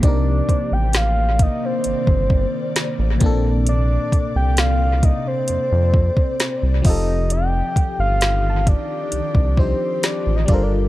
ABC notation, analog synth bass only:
X:1
M:4/4
L:1/16
Q:1/4=66
K:Fmix
V:1 name="Analog synth bass" clef=bass
C,,2 z A,,,4 z G,,, G,,,2 z2 A,,, B,,,2- | B,,,2 z C,,4 z F,, F,,2 z2 C,, F,,,2- | F,,,2 z G,,,4 z C,, C,,2 z2 A,,, G,,,2 |]